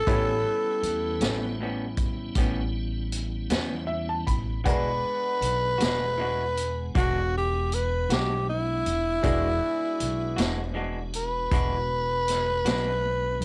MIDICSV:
0, 0, Header, 1, 7, 480
1, 0, Start_track
1, 0, Tempo, 762389
1, 44, Time_signature, 12, 3, 24, 8
1, 8467, End_track
2, 0, Start_track
2, 0, Title_t, "Upright piano"
2, 0, Program_c, 0, 0
2, 44, Note_on_c, 0, 64, 51
2, 44, Note_on_c, 0, 67, 45
2, 47, Note_on_c, 0, 71, 47
2, 50, Note_on_c, 0, 73, 55
2, 2436, Note_on_c, 0, 76, 51
2, 2552, Note_off_c, 0, 76, 0
2, 2575, Note_on_c, 0, 81, 49
2, 2683, Note_off_c, 0, 81, 0
2, 2687, Note_on_c, 0, 83, 50
2, 2901, Note_off_c, 0, 64, 0
2, 2901, Note_off_c, 0, 67, 0
2, 2903, Note_off_c, 0, 71, 0
2, 2904, Note_off_c, 0, 73, 0
2, 2910, Note_off_c, 0, 83, 0
2, 2930, Note_on_c, 0, 56, 43
2, 2930, Note_on_c, 0, 78, 46
2, 2931, Note_on_c, 0, 71, 42
2, 2935, Note_on_c, 0, 74, 52
2, 5782, Note_off_c, 0, 56, 0
2, 5782, Note_off_c, 0, 78, 0
2, 5783, Note_off_c, 0, 71, 0
2, 5785, Note_off_c, 0, 74, 0
2, 5810, Note_on_c, 0, 66, 45
2, 5811, Note_on_c, 0, 68, 45
2, 5811, Note_on_c, 0, 71, 45
2, 5815, Note_on_c, 0, 74, 52
2, 8467, Note_off_c, 0, 66, 0
2, 8467, Note_off_c, 0, 68, 0
2, 8467, Note_off_c, 0, 71, 0
2, 8467, Note_off_c, 0, 74, 0
2, 8467, End_track
3, 0, Start_track
3, 0, Title_t, "Tenor saxophone"
3, 0, Program_c, 1, 66
3, 0, Note_on_c, 1, 69, 98
3, 994, Note_off_c, 1, 69, 0
3, 2952, Note_on_c, 1, 71, 91
3, 4354, Note_off_c, 1, 71, 0
3, 4392, Note_on_c, 1, 66, 80
3, 4612, Note_off_c, 1, 66, 0
3, 4645, Note_on_c, 1, 67, 74
3, 4874, Note_on_c, 1, 71, 73
3, 4884, Note_off_c, 1, 67, 0
3, 5093, Note_off_c, 1, 71, 0
3, 5119, Note_on_c, 1, 67, 70
3, 5335, Note_off_c, 1, 67, 0
3, 5347, Note_on_c, 1, 64, 92
3, 6750, Note_off_c, 1, 64, 0
3, 7028, Note_on_c, 1, 71, 90
3, 8467, Note_off_c, 1, 71, 0
3, 8467, End_track
4, 0, Start_track
4, 0, Title_t, "Tonewheel organ"
4, 0, Program_c, 2, 16
4, 46, Note_on_c, 2, 64, 68
4, 49, Note_on_c, 2, 55, 65
4, 49, Note_on_c, 2, 59, 62
4, 50, Note_on_c, 2, 61, 61
4, 2902, Note_off_c, 2, 64, 0
4, 2904, Note_off_c, 2, 55, 0
4, 2904, Note_off_c, 2, 59, 0
4, 2904, Note_off_c, 2, 61, 0
4, 2927, Note_on_c, 2, 56, 62
4, 2932, Note_on_c, 2, 62, 62
4, 2933, Note_on_c, 2, 59, 62
4, 2934, Note_on_c, 2, 78, 61
4, 5780, Note_off_c, 2, 56, 0
4, 5783, Note_off_c, 2, 62, 0
4, 5784, Note_off_c, 2, 59, 0
4, 5784, Note_off_c, 2, 78, 0
4, 5801, Note_on_c, 2, 59, 65
4, 5802, Note_on_c, 2, 56, 68
4, 5802, Note_on_c, 2, 66, 63
4, 5804, Note_on_c, 2, 62, 62
4, 8467, Note_off_c, 2, 56, 0
4, 8467, Note_off_c, 2, 59, 0
4, 8467, Note_off_c, 2, 62, 0
4, 8467, Note_off_c, 2, 66, 0
4, 8467, End_track
5, 0, Start_track
5, 0, Title_t, "Clean electric guitar"
5, 0, Program_c, 3, 27
5, 46, Note_on_c, 3, 45, 70
5, 49, Note_on_c, 3, 55, 73
5, 50, Note_on_c, 3, 59, 67
5, 56, Note_on_c, 3, 61, 68
5, 189, Note_off_c, 3, 45, 0
5, 191, Note_off_c, 3, 55, 0
5, 191, Note_off_c, 3, 59, 0
5, 194, Note_off_c, 3, 61, 0
5, 766, Note_on_c, 3, 61, 55
5, 777, Note_on_c, 3, 59, 51
5, 782, Note_on_c, 3, 55, 46
5, 910, Note_off_c, 3, 61, 0
5, 915, Note_off_c, 3, 59, 0
5, 918, Note_off_c, 3, 55, 0
5, 1011, Note_on_c, 3, 45, 56
5, 1019, Note_on_c, 3, 55, 55
5, 1020, Note_on_c, 3, 59, 59
5, 1026, Note_on_c, 3, 61, 62
5, 1152, Note_off_c, 3, 45, 0
5, 1156, Note_off_c, 3, 55, 0
5, 1157, Note_off_c, 3, 59, 0
5, 1160, Note_off_c, 3, 61, 0
5, 1492, Note_on_c, 3, 45, 67
5, 1497, Note_on_c, 3, 55, 82
5, 1499, Note_on_c, 3, 59, 83
5, 1503, Note_on_c, 3, 61, 85
5, 1633, Note_off_c, 3, 45, 0
5, 1635, Note_off_c, 3, 55, 0
5, 1636, Note_off_c, 3, 59, 0
5, 1638, Note_off_c, 3, 61, 0
5, 2207, Note_on_c, 3, 59, 48
5, 2207, Note_on_c, 3, 61, 47
5, 2215, Note_on_c, 3, 55, 38
5, 2351, Note_off_c, 3, 59, 0
5, 2351, Note_off_c, 3, 61, 0
5, 2355, Note_off_c, 3, 55, 0
5, 2923, Note_on_c, 3, 52, 66
5, 2930, Note_on_c, 3, 56, 67
5, 2930, Note_on_c, 3, 62, 66
5, 2935, Note_on_c, 3, 66, 68
5, 3069, Note_off_c, 3, 52, 0
5, 3072, Note_off_c, 3, 56, 0
5, 3072, Note_off_c, 3, 62, 0
5, 3075, Note_off_c, 3, 66, 0
5, 3641, Note_on_c, 3, 66, 58
5, 3652, Note_on_c, 3, 62, 44
5, 3660, Note_on_c, 3, 56, 48
5, 3788, Note_off_c, 3, 66, 0
5, 3793, Note_off_c, 3, 62, 0
5, 3797, Note_off_c, 3, 56, 0
5, 3889, Note_on_c, 3, 52, 56
5, 3899, Note_on_c, 3, 56, 55
5, 3906, Note_on_c, 3, 62, 59
5, 3911, Note_on_c, 3, 66, 72
5, 4032, Note_off_c, 3, 52, 0
5, 4037, Note_off_c, 3, 56, 0
5, 4040, Note_off_c, 3, 62, 0
5, 4043, Note_off_c, 3, 66, 0
5, 4375, Note_on_c, 3, 52, 65
5, 4380, Note_on_c, 3, 56, 63
5, 4380, Note_on_c, 3, 62, 80
5, 4381, Note_on_c, 3, 66, 72
5, 4515, Note_off_c, 3, 52, 0
5, 4517, Note_off_c, 3, 56, 0
5, 4517, Note_off_c, 3, 62, 0
5, 4518, Note_off_c, 3, 66, 0
5, 5100, Note_on_c, 3, 66, 47
5, 5114, Note_on_c, 3, 62, 41
5, 5115, Note_on_c, 3, 56, 38
5, 5237, Note_off_c, 3, 66, 0
5, 5244, Note_off_c, 3, 56, 0
5, 5244, Note_off_c, 3, 62, 0
5, 5821, Note_on_c, 3, 52, 61
5, 5821, Note_on_c, 3, 62, 67
5, 5824, Note_on_c, 3, 56, 67
5, 5825, Note_on_c, 3, 66, 72
5, 5957, Note_off_c, 3, 52, 0
5, 5957, Note_off_c, 3, 62, 0
5, 5958, Note_off_c, 3, 56, 0
5, 5959, Note_off_c, 3, 66, 0
5, 6526, Note_on_c, 3, 66, 62
5, 6538, Note_on_c, 3, 62, 53
5, 6539, Note_on_c, 3, 56, 46
5, 6669, Note_off_c, 3, 66, 0
5, 6676, Note_off_c, 3, 56, 0
5, 6676, Note_off_c, 3, 62, 0
5, 6762, Note_on_c, 3, 52, 56
5, 6767, Note_on_c, 3, 56, 65
5, 6774, Note_on_c, 3, 62, 59
5, 6777, Note_on_c, 3, 66, 67
5, 6907, Note_off_c, 3, 52, 0
5, 6910, Note_off_c, 3, 56, 0
5, 6914, Note_off_c, 3, 62, 0
5, 6915, Note_off_c, 3, 66, 0
5, 7254, Note_on_c, 3, 52, 66
5, 7255, Note_on_c, 3, 56, 73
5, 7262, Note_on_c, 3, 66, 73
5, 7264, Note_on_c, 3, 62, 71
5, 7393, Note_off_c, 3, 52, 0
5, 7394, Note_off_c, 3, 56, 0
5, 7397, Note_off_c, 3, 66, 0
5, 7398, Note_off_c, 3, 62, 0
5, 7966, Note_on_c, 3, 66, 49
5, 7975, Note_on_c, 3, 62, 53
5, 7984, Note_on_c, 3, 56, 44
5, 8109, Note_off_c, 3, 66, 0
5, 8113, Note_off_c, 3, 62, 0
5, 8118, Note_off_c, 3, 56, 0
5, 8467, End_track
6, 0, Start_track
6, 0, Title_t, "Upright bass"
6, 0, Program_c, 4, 32
6, 45, Note_on_c, 4, 33, 86
6, 266, Note_off_c, 4, 33, 0
6, 521, Note_on_c, 4, 40, 74
6, 744, Note_off_c, 4, 40, 0
6, 756, Note_on_c, 4, 33, 77
6, 1456, Note_off_c, 4, 33, 0
6, 1483, Note_on_c, 4, 33, 76
6, 2180, Note_off_c, 4, 33, 0
6, 2203, Note_on_c, 4, 40, 75
6, 2659, Note_off_c, 4, 40, 0
6, 2693, Note_on_c, 4, 33, 72
6, 2911, Note_off_c, 4, 33, 0
6, 2934, Note_on_c, 4, 28, 81
6, 3151, Note_off_c, 4, 28, 0
6, 3406, Note_on_c, 4, 35, 74
6, 3627, Note_off_c, 4, 35, 0
6, 3655, Note_on_c, 4, 28, 85
6, 4345, Note_off_c, 4, 28, 0
6, 4376, Note_on_c, 4, 28, 85
6, 5066, Note_off_c, 4, 28, 0
6, 5095, Note_on_c, 4, 35, 82
6, 5545, Note_off_c, 4, 35, 0
6, 5580, Note_on_c, 4, 28, 73
6, 5794, Note_off_c, 4, 28, 0
6, 5818, Note_on_c, 4, 28, 91
6, 6033, Note_off_c, 4, 28, 0
6, 6298, Note_on_c, 4, 35, 79
6, 6513, Note_off_c, 4, 35, 0
6, 6538, Note_on_c, 4, 28, 83
6, 7226, Note_off_c, 4, 28, 0
6, 7250, Note_on_c, 4, 28, 82
6, 7942, Note_off_c, 4, 28, 0
6, 7964, Note_on_c, 4, 35, 80
6, 8419, Note_off_c, 4, 35, 0
6, 8442, Note_on_c, 4, 32, 82
6, 8467, Note_off_c, 4, 32, 0
6, 8467, End_track
7, 0, Start_track
7, 0, Title_t, "Drums"
7, 44, Note_on_c, 9, 36, 91
7, 45, Note_on_c, 9, 42, 63
7, 107, Note_off_c, 9, 36, 0
7, 108, Note_off_c, 9, 42, 0
7, 524, Note_on_c, 9, 42, 52
7, 587, Note_off_c, 9, 42, 0
7, 760, Note_on_c, 9, 42, 70
7, 772, Note_on_c, 9, 38, 99
7, 823, Note_off_c, 9, 42, 0
7, 835, Note_off_c, 9, 38, 0
7, 1241, Note_on_c, 9, 42, 55
7, 1243, Note_on_c, 9, 36, 69
7, 1304, Note_off_c, 9, 42, 0
7, 1306, Note_off_c, 9, 36, 0
7, 1480, Note_on_c, 9, 42, 74
7, 1483, Note_on_c, 9, 36, 92
7, 1543, Note_off_c, 9, 42, 0
7, 1546, Note_off_c, 9, 36, 0
7, 1965, Note_on_c, 9, 42, 57
7, 2028, Note_off_c, 9, 42, 0
7, 2203, Note_on_c, 9, 42, 72
7, 2215, Note_on_c, 9, 38, 96
7, 2266, Note_off_c, 9, 42, 0
7, 2278, Note_off_c, 9, 38, 0
7, 2690, Note_on_c, 9, 36, 64
7, 2693, Note_on_c, 9, 42, 54
7, 2753, Note_off_c, 9, 36, 0
7, 2756, Note_off_c, 9, 42, 0
7, 2932, Note_on_c, 9, 36, 90
7, 2932, Note_on_c, 9, 42, 76
7, 2995, Note_off_c, 9, 36, 0
7, 2995, Note_off_c, 9, 42, 0
7, 3413, Note_on_c, 9, 42, 55
7, 3476, Note_off_c, 9, 42, 0
7, 3654, Note_on_c, 9, 42, 72
7, 3666, Note_on_c, 9, 38, 98
7, 3717, Note_off_c, 9, 42, 0
7, 3729, Note_off_c, 9, 38, 0
7, 4138, Note_on_c, 9, 42, 54
7, 4201, Note_off_c, 9, 42, 0
7, 4378, Note_on_c, 9, 36, 102
7, 4381, Note_on_c, 9, 42, 69
7, 4441, Note_off_c, 9, 36, 0
7, 4444, Note_off_c, 9, 42, 0
7, 4860, Note_on_c, 9, 42, 54
7, 4923, Note_off_c, 9, 42, 0
7, 5100, Note_on_c, 9, 42, 71
7, 5112, Note_on_c, 9, 38, 100
7, 5163, Note_off_c, 9, 42, 0
7, 5175, Note_off_c, 9, 38, 0
7, 5578, Note_on_c, 9, 42, 53
7, 5641, Note_off_c, 9, 42, 0
7, 5813, Note_on_c, 9, 42, 74
7, 5815, Note_on_c, 9, 36, 87
7, 5876, Note_off_c, 9, 42, 0
7, 5878, Note_off_c, 9, 36, 0
7, 6296, Note_on_c, 9, 42, 59
7, 6359, Note_off_c, 9, 42, 0
7, 6535, Note_on_c, 9, 42, 80
7, 6547, Note_on_c, 9, 38, 97
7, 6598, Note_off_c, 9, 42, 0
7, 6610, Note_off_c, 9, 38, 0
7, 7011, Note_on_c, 9, 42, 59
7, 7074, Note_off_c, 9, 42, 0
7, 7249, Note_on_c, 9, 42, 73
7, 7250, Note_on_c, 9, 36, 96
7, 7312, Note_off_c, 9, 42, 0
7, 7313, Note_off_c, 9, 36, 0
7, 7730, Note_on_c, 9, 42, 57
7, 7742, Note_on_c, 9, 38, 28
7, 7793, Note_off_c, 9, 42, 0
7, 7805, Note_off_c, 9, 38, 0
7, 7968, Note_on_c, 9, 42, 76
7, 7980, Note_on_c, 9, 38, 99
7, 8031, Note_off_c, 9, 42, 0
7, 8043, Note_off_c, 9, 38, 0
7, 8447, Note_on_c, 9, 42, 50
7, 8467, Note_off_c, 9, 42, 0
7, 8467, End_track
0, 0, End_of_file